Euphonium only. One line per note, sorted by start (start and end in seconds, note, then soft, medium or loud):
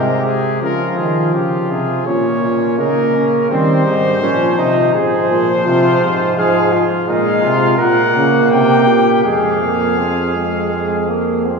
0.00 0.60 C3 medium
0.62 0.95 C#3 medium
0.98 1.33 D#3 medium
1.34 1.69 C#3 medium
1.70 2.05 C3 medium
2.06 2.42 A#2 medium
2.42 2.80 A#2 medium
2.79 3.50 C#3 medium
3.51 3.86 D#3 medium
3.87 4.24 G#2 medium
4.22 4.58 A#2 medium
4.59 4.94 C3 medium
4.95 5.30 G#2 medium
5.30 5.66 A#2 medium
5.66 6.01 C3 medium
6.02 6.37 G#2 medium
6.38 6.83 G#2 medium
7.08 7.41 A#2 medium
7.44 7.79 C3 medium
7.80 8.15 A#2 medium
8.16 8.51 C#3 medium
8.52 8.90 C3 medium
8.88 9.24 A#2 medium
9.25 11.60 F2 medium